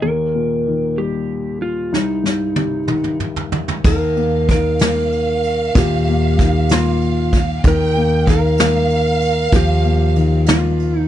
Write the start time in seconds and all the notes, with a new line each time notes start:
0.02 D#2 A#4
0.35 A#2
0.67 D#3
0.98 G3 G4
1.62 F4
1.93 C2 D#4, snare
2.24 G2, snare
2.56 C3, high tom
2.88 D#3, mid tom
3.04 mid tom
3.20 mid tom
3.36 floor tom
3.52 floor tom
3.68 floor tom
3.84 D#2 D#3 A#4 F5, kick, crash
4.16 A#3, ride
4.49 D#3 A#4, kick, ride
4.79 A#3, snare, ride
5.12 ride
5.43 ride
5.75 D#2 A#2 G4, kick, ride
6.07 A#3, ride
6.39 D#3, kick, ride
6.69 A#3, snare, ride
6.73 F4
7.01 ride
7.32 kick, ride
7.64 D#2 D#3 A#4 G5, kick, ride
7.96 A#3, ride
8.27 D#3 A#4 F5, kick, ride
8.58 A#3, snare, ride
8.90 ride
9.21 ride
9.52 D#2 F3 G4, kick, ride
9.84 A#3, ride
10.16 D#3, ride
10.46 A#3, snare, ride
10.50 F4
10.79 ride
10.99 D#4